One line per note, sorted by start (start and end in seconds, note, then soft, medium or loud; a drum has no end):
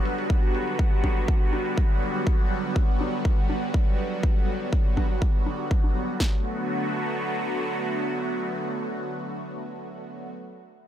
0.00 6.16 D3 medium
0.00 6.16 F#3 medium
0.00 6.16 G3 medium
0.00 6.16 B3 medium
0.00 6.16 F#4 medium
0.05 closed hi-hat medium
0.18 closed hi-hat medium
0.30 kick loud
0.30 closed hi-hat medium
0.43 closed hi-hat soft
0.54 closed hi-hat medium
0.67 closed hi-hat medium
0.79 kick loud
0.79 closed hi-hat medium
1.04 kick medium
1.04 closed hi-hat medium
1.04 high conga medium
1.17 closed hi-hat soft
1.28 kick loud
1.28 closed hi-hat medium
1.53 closed hi-hat medium
1.53 high conga medium
1.66 closed hi-hat medium
1.77 kick loud
2.02 closed hi-hat medium
2.15 closed hi-hat medium
2.27 kick loud
2.40 closed hi-hat soft
2.51 closed hi-hat medium
2.64 closed hi-hat medium
2.76 kick loud
3.00 closed hi-hat medium
3.00 high conga medium
3.25 kick loud
3.50 closed hi-hat medium
3.50 high conga medium
3.63 closed hi-hat medium
3.74 kick loud
4.12 closed hi-hat medium
4.23 kick loud
4.36 closed hi-hat soft
4.48 closed hi-hat medium
4.61 closed hi-hat medium
4.73 kick loud
4.86 closed hi-hat soft
4.97 kick medium
4.97 high conga medium
5.22 kick loud
5.35 closed hi-hat soft
5.46 closed hi-hat medium
5.46 high conga medium
5.71 kick loud
5.84 high conga medium
5.96 closed hi-hat medium
6.09 closed hi-hat medium
6.20 10.32 D3 medium
6.20 10.32 F#3 medium
6.20 10.32 A3 medium
6.20 10.32 B3 medium
6.20 10.32 F#4 medium
6.20 kick loud
6.20 snare loud